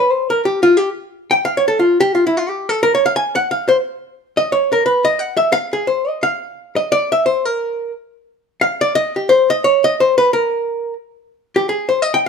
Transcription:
0.00 0.11 B4 medium
0.11 0.29 C5 loud
0.30 0.41 A#4 medium
0.45 0.62 G4 medium
0.63 0.77 F4 medium
0.77 0.89 G4 medium
1.31 1.43 G5 medium
1.45 1.55 F5 medium
1.57 1.66 C#5 medium
1.68 1.77 A4 medium
1.79 1.98 F4 medium
2.00 2.11 G4 loud
2.15 2.24 F4 medium
2.27 2.37 E4 medium
2.37 2.49 F4 medium
2.49 2.69 G4 medium
2.69 2.80 A4 medium
2.83 2.92 A#4 medium
2.95 3.03 C#5 medium
3.06 3.15 F5 medium
3.16 3.35 G#5 medium
3.35 3.47 F#5 loud
3.51 3.70 F5 medium
3.69 3.76 C5 medium
4.37 4.49 D#5 medium
4.52 4.71 C#5 medium
4.72 4.84 A#4 medium
4.86 5.05 B4 medium
5.05 5.19 D#5 loud
5.19 5.37 F#5 loud
5.37 5.50 E5 medium
5.52 5.73 F5 loud
5.73 5.85 G#4 medium
5.87 6.08 C5 medium
6.08 6.20 D#5 medium
6.23 6.73 F5 medium
6.76 6.88 D#5 medium
6.92 7.11 D5 loud
7.12 7.23 E5 medium
7.26 7.45 C5 medium
7.45 7.91 A#4 medium
8.61 8.81 F5 medium
8.81 8.93 D5 medium
8.95 9.15 D#5 loud
9.16 9.27 G4 medium
9.29 9.49 C5 medium
9.50 9.62 D#5 loud
9.64 9.83 C#5 loud
9.84 9.96 D#5 loud
10.00 10.17 C5 medium
10.18 10.30 B4 medium
10.33 10.93 A#4 medium
11.56 11.67 G4 medium
11.69 11.88 G#4 medium
11.89 12.02 C5 medium
12.02 12.12 D#5 medium
12.14 12.24 G5 loud

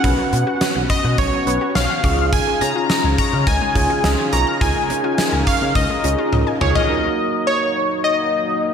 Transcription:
0.00 6.86 C#4 medium
0.00 0.86 F#5 loud
0.00 downlifter medium
0.04 0.16 B1 loud
0.04 0.11 C#3 medium
0.04 2.02 B3 medium
0.04 0.80 C#4 medium
0.04 0.80 F#4 medium
0.04 2.02 F#4 medium
0.04 0.80 B4 medium
0.04 kick loud
0.04 closed hi-hat medium
0.18 0.26 F#3 medium
0.33 0.45 B2 loud
0.33 0.40 B3 medium
0.33 closed hi-hat medium
0.47 0.54 F#4 medium
0.61 0.68 C#5 medium
0.61 snare loud
0.61 closed hi-hat medium
0.75 0.87 B1 loud
0.75 0.83 F#5 medium
0.90 1.16 D#5 medium
0.90 0.97 B5 medium
0.90 kick medium
0.90 closed hi-hat medium
1.04 1.16 B2 loud
1.04 1.11 F#6 medium
1.18 1.30 B1 loud
1.18 1.26 C#3 medium
1.18 1.77 C#5 loud
1.18 kick loud
1.18 closed hi-hat medium
1.33 1.40 F#3 medium
1.47 1.59 B1 medium
1.47 1.54 B3 medium
1.47 1.85 C#4 medium
1.47 1.85 F#4 medium
1.47 1.85 B4 medium
1.47 closed hi-hat medium
1.61 1.68 F#4 medium
1.75 1.87 B1 loud
1.75 1.83 C#5 medium
1.75 2.29 F5 loud
1.75 snare loud
1.75 closed hi-hat medium
1.90 1.97 F#5 medium
2.04 2.40 C#2 loud
2.04 6.86 C#3 medium
2.04 2.96 C#4 medium
2.04 6.86 D#4 medium
2.04 6.86 F4 medium
2.04 2.95 F4 medium
2.04 4.30 G#4 medium
2.04 2.95 G#4 medium
2.04 2.11 C#6 medium
2.04 kick medium
2.04 closed hi-hat medium
2.18 2.26 F6 medium
2.33 2.40 D#3 medium
2.33 2.62 G#5 loud
2.33 kick loud
2.33 closed hi-hat medium
2.47 2.54 G#3 medium
2.61 2.73 C#3 loud
2.61 2.68 C#4 medium
2.61 3.17 A#5 loud
2.61 closed hi-hat medium
2.76 2.83 F4 medium
2.89 2.97 D#5 medium
2.89 snare loud
2.89 closed hi-hat medium
3.04 3.16 C#2 loud
3.04 3.11 G#5 medium
3.18 3.48 A#5 loud
3.18 3.26 C#6 medium
3.18 kick medium
3.18 closed hi-hat medium
3.33 3.45 C#3 loud
3.33 3.40 F6 medium
3.47 3.59 C#2 loud
3.47 3.54 D#3 medium
3.47 4.35 G#5 loud
3.47 kick loud
3.47 closed hi-hat medium
3.61 3.68 G#3 medium
3.75 3.87 C#2 loud
3.75 3.83 C#4 medium
3.75 4.13 C#4 medium
3.75 4.13 F4 medium
3.75 4.13 G#4 medium
3.75 kick medium
3.75 closed hi-hat medium
3.90 3.97 F4 medium
4.04 4.16 C#2 loud
4.04 4.11 D#5 loud
4.04 snare loud
4.04 closed hi-hat medium
4.18 4.25 G#5 medium
4.33 4.45 B1 medium
4.33 4.52 C#4 medium
4.33 4.52 F4 medium
4.33 6.87 A#4 medium
4.33 4.52 A#4 medium
4.33 4.62 A#5 loud
4.33 4.40 C#6 medium
4.33 closed hi-hat medium
4.47 4.54 F6 medium
4.61 4.73 C#2 loud
4.61 4.68 D#3 loud
4.61 5.37 C#4 medium
4.61 5.37 F4 medium
4.61 5.37 G#4 medium
4.61 5.50 G#5 loud
4.61 kick loud
4.61 closed hi-hat medium
4.75 4.83 G#3 medium
4.90 5.02 C#3 loud
4.90 4.97 C#4 medium
4.90 closed hi-hat medium
5.04 5.11 F4 medium
5.18 5.25 D#5 medium
5.18 snare loud
5.18 closed hi-hat medium
5.33 5.45 C#2 loud
5.33 5.40 G#5 medium
5.47 5.76 F5 loud
5.47 5.54 C#6 medium
5.47 kick medium
5.47 closed hi-hat medium
5.61 5.73 C#3 loud
5.61 5.68 F6 medium
5.75 5.87 C#2 loud
5.75 5.83 D#3 medium
5.75 6.57 D#5 medium
5.75 kick loud
5.75 closed hi-hat medium
5.90 5.97 G#3 medium
6.04 6.16 C#2 loud
6.04 6.11 C#4 medium
6.04 6.42 C#4 medium
6.04 6.42 F4 medium
6.04 6.42 G#4 medium
6.04 closed hi-hat medium
6.18 6.25 F4 medium
6.33 6.45 C#2 loud
6.33 6.40 D#5 medium
6.33 high tom medium
6.47 6.54 G#5 medium
6.61 6.73 C#2 medium
6.61 6.80 C#4 medium
6.61 6.80 F4 medium
6.61 6.80 G#4 medium
6.61 6.75 C#5 medium
6.61 6.68 C#6 medium
6.61 mid tom medium
6.75 7.49 D#5 loud
6.75 6.83 F6 medium
6.75 floor tom medium
6.90 8.74 F#3 medium
6.90 8.74 A#3 medium
6.90 8.74 D#4 medium
6.90 7.65 D#4 medium
6.90 7.65 F#4 medium
6.90 7.65 A#4 medium
7.47 8.00 C#5 loud
8.04 8.74 D#5 loud

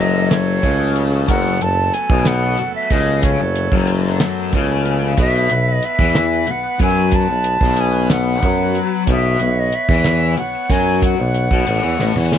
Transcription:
0.00 0.59 F#1 medium
0.00 0.62 F#2 medium
0.00 5.14 F#3 medium
0.00 5.13 A3 medium
0.00 1.24 C#4 medium
0.00 5.14 A4 medium
0.00 0.31 D#5 medium
0.29 1.03 C#5 medium
0.29 snare loud
0.29 closed hi-hat medium
0.29 shaker medium
0.62 1.24 C#2 medium
0.62 1.27 C#3 medium
0.62 kick medium
0.62 closed hi-hat medium
0.96 closed hi-hat medium
0.96 shaker soft
1.27 1.59 F#1 medium
1.27 1.59 F#2 loud
1.27 12.38 B3 medium
1.27 1.64 F#5 medium
1.27 kick medium
1.27 closed hi-hat medium
1.27 shaker medium
1.60 1.92 F#1 medium
1.60 1.87 F#2 medium
1.60 1.95 A5 loud
1.60 closed hi-hat medium
1.94 2.29 G#5 medium
1.94 closed hi-hat medium
2.10 2.55 B1 medium
2.10 2.57 B2 loud
2.10 kick loud
2.25 2.75 F#5 loud
2.25 snare loud
2.25 closed hi-hat medium
2.25 shaker medium
2.57 2.75 F#1 soft
2.57 muted distorted electric guitar stroke medium
2.57 closed hi-hat medium
2.75 2.93 E5 medium
2.90 3.36 C#2 loud
2.90 3.39 C#3 medium
2.90 3.23 D#5 medium
2.90 kick medium
2.90 closed hi-hat medium
2.90 shaker soft
3.23 3.92 C#5 medium
3.23 kick loud
3.23 closed hi-hat medium
3.23 shaker medium
3.39 3.70 F#1 medium
3.39 3.65 F#2 medium
3.55 closed hi-hat medium
3.72 4.23 F#1 medium
3.72 4.52 F#2 loud
3.72 kick loud
3.87 closed hi-hat medium
4.05 shaker soft
4.20 snare loud
4.20 closed hi-hat medium
4.20 shaker medium
4.52 5.14 C#2 medium
4.52 5.17 C#3 medium
4.52 kick medium
4.52 closed hi-hat medium
4.52 shaker soft
4.85 closed hi-hat medium
4.85 shaker soft
5.02 shaker soft
5.17 5.48 B1 medium
5.17 5.49 B2 medium
5.17 9.04 B4 medium
5.17 5.70 E5 medium
5.17 12.38 F#5 medium
5.17 kick loud
5.17 closed hi-hat medium
5.17 shaker medium
5.50 5.81 B1 medium
5.50 5.77 B2 medium
5.50 closed hi-hat medium
5.68 5.86 D#5 medium
5.83 6.52 E5 medium
5.83 closed hi-hat medium
5.99 6.45 E2 medium
5.99 6.47 E3 medium
5.99 kick loud
6.15 snare loud
6.15 closed hi-hat medium
6.15 shaker medium
6.47 6.66 B1 soft
6.47 6.82 F#5 medium
6.47 muted distorted electric guitar stroke medium
6.47 closed hi-hat medium
6.79 7.25 F#2 medium
6.79 7.28 F#3 medium
6.79 7.17 G#5 loud
6.79 kick loud
6.79 closed hi-hat medium
6.79 shaker soft
7.12 7.82 A5 loud
7.12 kick loud
7.12 closed hi-hat medium
7.12 shaker medium
7.29 7.60 B1 medium
7.29 7.55 B2 medium
7.44 closed hi-hat medium
7.61 8.38 B1 medium
7.61 8.43 B2 loud
7.61 kick loud
7.76 closed hi-hat medium
7.80 8.11 G#5 medium
8.10 8.80 F#5 medium
8.10 snare loud
8.10 closed hi-hat medium
8.10 shaker medium
8.43 8.78 F#2 medium
8.43 9.07 F#3 medium
8.43 kick loud
8.43 closed hi-hat medium
8.75 closed hi-hat medium
8.75 shaker soft
9.07 9.38 B1 medium
9.07 9.39 B2 loud
9.07 12.38 C#5 medium
9.07 kick medium
9.07 closed hi-hat medium
9.07 shaker loud
9.12 9.61 E5 medium
9.39 9.71 B1 medium
9.39 9.66 B2 medium
9.39 closed hi-hat medium
9.59 9.77 D#5 medium
9.72 10.38 E5 medium
9.72 closed hi-hat medium
9.89 10.34 E2 medium
9.89 10.37 E3 loud
9.89 kick loud
10.04 snare loud
10.04 closed hi-hat medium
10.04 shaker medium
10.37 10.55 B1 soft
10.37 10.73 F#5 medium
10.37 muted distorted electric guitar stroke medium
10.37 closed hi-hat medium
10.69 11.15 F#2 medium
10.69 11.18 F#3 medium
10.69 11.03 G#5 loud
10.69 kick medium
10.69 closed hi-hat medium
10.69 shaker soft
11.02 12.38 F#5 medium
11.02 kick loud
11.02 closed hi-hat medium
11.02 shaker medium
11.19 11.49 B1 medium
11.19 11.45 B2 medium
11.34 closed hi-hat medium
11.34 shaker soft
11.51 11.67 B1 medium
11.51 11.66 B2 loud
11.51 kick loud
11.67 11.83 A1 medium
11.67 11.82 A2 medium
11.67 closed hi-hat medium
11.82 11.99 E2 medium
11.82 11.99 E3 loud
11.99 12.14 A1 medium
11.99 12.15 A2 loud
11.99 snare medium
11.99 shaker medium
12.15 12.38 E2 loud
12.15 12.38 E3 medium
12.15 high tom medium
12.15 shaker soft
12.32 snare medium

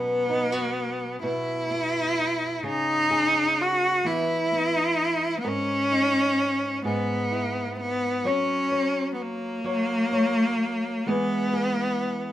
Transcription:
0.00 1.17 B2 medium
0.00 2.63 F#3 medium
0.00 1.24 B3 medium
0.00 1.17 B4 medium
0.29 0.52 D#4 soft
0.52 1.23 F#4 soft
1.23 2.58 B2 medium
1.23 1.69 B3 soft
1.23 2.60 E4 medium
1.70 2.63 B3 soft
2.63 4.04 C#3 medium
2.63 3.63 D#4 medium
2.63 3.10 G#4 medium
3.11 5.44 G#4 soft
3.61 4.08 F#4 medium
4.04 5.39 E3 medium
4.04 4.51 B3 soft
4.04 5.39 E4 medium
4.52 8.26 B3 soft
5.40 5.49 B3 medium
5.44 6.83 G#2 medium
5.44 6.86 C#4 medium
5.44 6.79 A#4 medium
5.92 6.85 D#4 soft
6.84 8.25 G#2 medium
6.84 7.75 B3 medium
6.84 8.25 G#4 soft
7.31 8.19 E4 soft
7.80 8.29 B3 medium
8.24 9.63 F#3 medium
8.24 9.13 C#4 medium
8.24 8.70 C#5 medium
8.71 9.59 C#5 soft
9.14 9.23 B3 soft
9.22 11.09 A#3 medium
9.64 11.05 F#3 soft
9.64 10.12 C#5 soft
10.13 11.00 C#5 soft
11.06 12.32 E3 medium
11.06 12.32 G#3 soft
11.06 12.32 B3 soft
11.06 12.32 B3 medium
11.06 11.52 G#4 medium
11.06 12.32 B4 medium
11.53 12.32 G#4 soft

